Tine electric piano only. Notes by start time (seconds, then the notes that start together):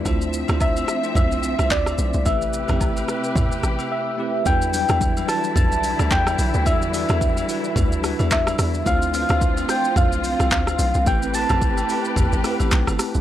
0.04 A3 D4 E4 F4 C5
0.47 A3 D4 E4 F4 C5
1.02 A3 D4 E4 F4 C5
2.24 A3 C4 E4 G4 B4
2.68 A3 C4 E4 G4 B4
4.17 A3 C4 E4 G4 B4
4.44 G3 D4 E4 F#4 B4
4.72 F#3 G3 D4 E4 B4
5.27 G3 D4 E4 F#4 B4
6.65 G3 D4 E4 F#4 D5
6.92 G3 D4 E4 F#4 B4
7.47 G3 D4 E4 F#4 B4
8.02 G3 D4 E4 F#4 B4
8.85 A3 D4 E4 F4 C5
9.12 A3 C4 D4 F4 B4
9.22 C5
9.67 A3 C4 D4 F4 C5
11.05 A3 C4 E4 G4 B4
11.33 A3 C4 E4 G4 B4
11.87 A3 C4 E4 G4 B4
12.43 A3 C4 E4 G4 B4 F#5
12.72 G5
12.99 A5